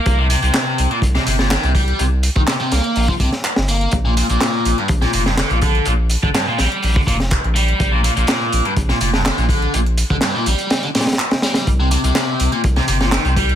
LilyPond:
<<
  \new Staff \with { instrumentName = "Overdriven electric guitar" } { \clef bass \time 4/4 \key bes \mixolydian \tempo 4 = 124 bes16 c16 c16 c4 bes,16 r16 c16 c16 bes,16 ees16 c16 g8 | c16 r8 ees16 c16 c16 bes8. f16 c16 r8. bes8 | r16 bes,16 bes,16 bes,4 g,16 r16 bes,16 bes,16 g,16 d16 bes,16 d8 | bes,16 r8 d16 g,16 bes,16 g8. d16 bes,16 r8. g8~ |
g16 bes,16 bes,16 bes,4 g,16 r16 bes,16 bes,16 g,16 d16 bes,16 d8 | bes,16 r8 d16 g,16 bes,16 g8. d16 bes,16 r8. g8 | r16 c16 c16 c4 bes,16 r16 c16 c16 bes,16 ees16 c16 g8 | }
  \new Staff \with { instrumentName = "Sub bass" } { \clef bass \time 4/4 \key bes \mixolydian c,8 r16 c,16 r8 c,16 r16 c,16 r16 g,,8 r16 c,8 r16 | c,8 r16 c,16 r8 c,16 r16 bes,,16 r16 c,16 r8 g,,8 r16 | bes,,8 r16 bes,,16 r8 bes,,16 r16 bes,,16 r16 f,,8 r16 bes,,8 r16 | bes,,8 r16 bes,,16 r8 bes,,16 r16 bes,,16 r16 f,,8 r16 bes,,8 r16 |
bes,,8 r16 bes,,16 r8 bes,,16 r16 bes,,16 r16 f,,8 r16 bes,,8 r16 | bes,,8 r16 bes,,16 r8 bes,,16 r2 r16 | c,8 r16 c,16 r8 c,16 r16 c,16 r16 g,,8 r16 c,8 r16 | }
  \new DrumStaff \with { instrumentName = "Drums" } \drummode { \time 4/4 <hh bd>8 <hh hho>16 hh16 <hc hh sn>8 <hh hho>16 hh16 <hh bd>16 <hh sn>16 <hh hho>16 <hh sn>16 <hc hh sn>16 hh16 <hh hho bd>16 hh16 | hh8 <hh hho>16 <hh bd>16 <hc hh sn>16 hh16 <hh hho sn>16 hh16 <hh hho>16 <hh bd>16 <hh hho bd>16 <hh sn>16 <hc hh>16 <hh sn>16 <hh hho>16 hh16 | <hh bd>8 <hh hho>16 hh16 <hc hh sn>8 <hh hho>16 hh16 <hh bd>16 <hh sn>16 <hh hho>16 <hh sn>16 <hc hh sn>16 hh16 <hh hho bd>16 hh16 | hh8 <hh hho>16 bd16 <hc hh sn>8 <hh hho sn>16 hh16 <hh hho>16 <hh bd>16 <hh hho bd>16 <hh sn>16 <hc hh bd>16 hh16 <hh hho>16 hh16 |
<hh bd>8 <hh hho>16 hh16 <hc hh sn>8 <hh hho>16 hh16 <hh bd>16 <hh sn>16 <hh hho>16 <hh sn>16 <hc hh sn>16 hh16 <hh hho bd>16 hh16 | hh16 hh16 <hh hho>16 bd16 <hc hh sn>8 <hh hho>16 hh16 <hh sn>16 hh16 <hh hho sn>32 <hh sn>32 <hh sn>32 <hh sn>32 <hc hh>16 <hh sn>16 <hh hho sn>16 <hh sn>16 | <hh bd>8 <hh hho>16 hh16 <hc hh sn>8 <hh hho>16 hh16 <hh bd>16 <hh sn>16 <hh hho>16 <hh sn>16 <hc hh sn>16 hh16 <hh hho bd>16 hh16 | }
>>